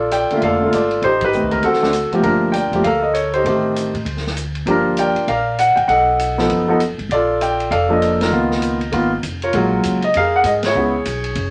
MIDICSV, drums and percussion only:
0, 0, Header, 1, 2, 480
1, 0, Start_track
1, 0, Key_signature, -2, "major"
1, 0, Tempo, 304105
1, 1618, Time_signature, 4, 2, 24, 8
1, 18158, End_track
2, 0, Start_track
2, 0, Title_t, "Drums"
2, 179, Note_on_c, 9, 44, 47
2, 179, Note_on_c, 9, 51, 51
2, 336, Note_off_c, 9, 44, 0
2, 336, Note_off_c, 9, 51, 0
2, 479, Note_on_c, 9, 51, 34
2, 637, Note_off_c, 9, 51, 0
2, 656, Note_on_c, 9, 51, 42
2, 814, Note_off_c, 9, 51, 0
2, 1144, Note_on_c, 9, 44, 45
2, 1144, Note_on_c, 9, 51, 55
2, 1302, Note_off_c, 9, 44, 0
2, 1302, Note_off_c, 9, 51, 0
2, 1433, Note_on_c, 9, 51, 32
2, 1591, Note_off_c, 9, 51, 0
2, 1615, Note_on_c, 9, 51, 44
2, 1773, Note_off_c, 9, 51, 0
2, 1908, Note_on_c, 9, 51, 57
2, 1916, Note_on_c, 9, 36, 65
2, 2066, Note_off_c, 9, 51, 0
2, 2073, Note_off_c, 9, 36, 0
2, 2094, Note_on_c, 9, 44, 41
2, 2251, Note_off_c, 9, 44, 0
2, 2386, Note_on_c, 9, 51, 37
2, 2544, Note_off_c, 9, 51, 0
2, 2568, Note_on_c, 9, 51, 47
2, 2725, Note_off_c, 9, 51, 0
2, 2733, Note_on_c, 9, 38, 23
2, 2890, Note_off_c, 9, 38, 0
2, 2890, Note_on_c, 9, 38, 35
2, 3044, Note_on_c, 9, 44, 49
2, 3044, Note_on_c, 9, 51, 53
2, 3048, Note_off_c, 9, 38, 0
2, 3202, Note_off_c, 9, 44, 0
2, 3202, Note_off_c, 9, 51, 0
2, 3353, Note_on_c, 9, 51, 33
2, 3511, Note_off_c, 9, 51, 0
2, 3526, Note_on_c, 9, 51, 44
2, 3683, Note_off_c, 9, 51, 0
2, 4000, Note_on_c, 9, 44, 43
2, 4000, Note_on_c, 9, 51, 51
2, 4158, Note_off_c, 9, 44, 0
2, 4158, Note_off_c, 9, 51, 0
2, 4306, Note_on_c, 9, 51, 35
2, 4464, Note_off_c, 9, 51, 0
2, 4486, Note_on_c, 9, 51, 50
2, 4644, Note_off_c, 9, 51, 0
2, 4963, Note_on_c, 9, 44, 46
2, 4963, Note_on_c, 9, 51, 48
2, 5121, Note_off_c, 9, 44, 0
2, 5121, Note_off_c, 9, 51, 0
2, 5262, Note_on_c, 9, 51, 33
2, 5420, Note_off_c, 9, 51, 0
2, 5454, Note_on_c, 9, 51, 50
2, 5612, Note_off_c, 9, 51, 0
2, 5939, Note_on_c, 9, 44, 47
2, 5939, Note_on_c, 9, 51, 53
2, 6097, Note_off_c, 9, 44, 0
2, 6097, Note_off_c, 9, 51, 0
2, 6228, Note_on_c, 9, 51, 34
2, 6386, Note_off_c, 9, 51, 0
2, 6408, Note_on_c, 9, 51, 42
2, 6566, Note_off_c, 9, 51, 0
2, 6580, Note_on_c, 9, 38, 22
2, 6736, Note_off_c, 9, 38, 0
2, 6736, Note_on_c, 9, 38, 34
2, 6891, Note_on_c, 9, 44, 40
2, 6891, Note_on_c, 9, 51, 49
2, 6894, Note_off_c, 9, 38, 0
2, 7049, Note_off_c, 9, 44, 0
2, 7049, Note_off_c, 9, 51, 0
2, 7182, Note_on_c, 9, 51, 32
2, 7339, Note_off_c, 9, 51, 0
2, 7366, Note_on_c, 9, 51, 46
2, 7524, Note_off_c, 9, 51, 0
2, 7840, Note_on_c, 9, 44, 48
2, 7840, Note_on_c, 9, 51, 53
2, 7998, Note_off_c, 9, 44, 0
2, 7998, Note_off_c, 9, 51, 0
2, 8145, Note_on_c, 9, 51, 36
2, 8303, Note_off_c, 9, 51, 0
2, 8331, Note_on_c, 9, 51, 48
2, 8489, Note_off_c, 9, 51, 0
2, 8815, Note_on_c, 9, 44, 45
2, 8815, Note_on_c, 9, 51, 54
2, 8973, Note_off_c, 9, 44, 0
2, 8973, Note_off_c, 9, 51, 0
2, 9108, Note_on_c, 9, 51, 33
2, 9266, Note_off_c, 9, 51, 0
2, 9293, Note_on_c, 9, 51, 46
2, 9450, Note_off_c, 9, 51, 0
2, 9777, Note_on_c, 9, 44, 44
2, 9777, Note_on_c, 9, 51, 58
2, 9935, Note_off_c, 9, 44, 0
2, 9935, Note_off_c, 9, 51, 0
2, 10075, Note_on_c, 9, 38, 39
2, 10233, Note_off_c, 9, 38, 0
2, 10254, Note_on_c, 9, 51, 52
2, 10412, Note_off_c, 9, 51, 0
2, 10734, Note_on_c, 9, 44, 46
2, 10734, Note_on_c, 9, 51, 49
2, 10892, Note_off_c, 9, 44, 0
2, 10892, Note_off_c, 9, 51, 0
2, 11033, Note_on_c, 9, 51, 33
2, 11191, Note_off_c, 9, 51, 0
2, 11219, Note_on_c, 9, 51, 49
2, 11376, Note_off_c, 9, 51, 0
2, 11697, Note_on_c, 9, 44, 47
2, 11697, Note_on_c, 9, 51, 51
2, 11855, Note_off_c, 9, 44, 0
2, 11855, Note_off_c, 9, 51, 0
2, 11997, Note_on_c, 9, 51, 36
2, 12155, Note_off_c, 9, 51, 0
2, 12179, Note_on_c, 9, 51, 51
2, 12337, Note_off_c, 9, 51, 0
2, 12658, Note_on_c, 9, 44, 39
2, 12658, Note_on_c, 9, 51, 53
2, 12816, Note_off_c, 9, 44, 0
2, 12816, Note_off_c, 9, 51, 0
2, 12957, Note_on_c, 9, 51, 51
2, 12963, Note_on_c, 9, 38, 59
2, 13115, Note_off_c, 9, 51, 0
2, 13121, Note_off_c, 9, 38, 0
2, 13436, Note_on_c, 9, 38, 30
2, 13594, Note_off_c, 9, 38, 0
2, 13604, Note_on_c, 9, 44, 48
2, 13604, Note_on_c, 9, 51, 53
2, 13762, Note_off_c, 9, 44, 0
2, 13762, Note_off_c, 9, 51, 0
2, 13905, Note_on_c, 9, 51, 36
2, 14063, Note_off_c, 9, 51, 0
2, 14086, Note_on_c, 9, 51, 47
2, 14243, Note_off_c, 9, 51, 0
2, 14567, Note_on_c, 9, 44, 50
2, 14567, Note_on_c, 9, 51, 52
2, 14725, Note_off_c, 9, 44, 0
2, 14725, Note_off_c, 9, 51, 0
2, 14868, Note_on_c, 9, 51, 36
2, 15026, Note_off_c, 9, 51, 0
2, 15040, Note_on_c, 9, 51, 53
2, 15198, Note_off_c, 9, 51, 0
2, 15523, Note_on_c, 9, 44, 51
2, 15523, Note_on_c, 9, 51, 60
2, 15681, Note_off_c, 9, 44, 0
2, 15681, Note_off_c, 9, 51, 0
2, 15820, Note_on_c, 9, 51, 41
2, 15978, Note_off_c, 9, 51, 0
2, 16002, Note_on_c, 9, 51, 50
2, 16160, Note_off_c, 9, 51, 0
2, 16474, Note_on_c, 9, 44, 52
2, 16474, Note_on_c, 9, 51, 58
2, 16632, Note_off_c, 9, 44, 0
2, 16632, Note_off_c, 9, 51, 0
2, 16773, Note_on_c, 9, 51, 55
2, 16780, Note_on_c, 9, 38, 64
2, 16931, Note_off_c, 9, 51, 0
2, 16938, Note_off_c, 9, 38, 0
2, 17447, Note_on_c, 9, 44, 51
2, 17447, Note_on_c, 9, 51, 62
2, 17605, Note_off_c, 9, 44, 0
2, 17605, Note_off_c, 9, 51, 0
2, 17737, Note_on_c, 9, 51, 40
2, 17895, Note_off_c, 9, 51, 0
2, 17919, Note_on_c, 9, 51, 51
2, 18077, Note_off_c, 9, 51, 0
2, 18158, End_track
0, 0, End_of_file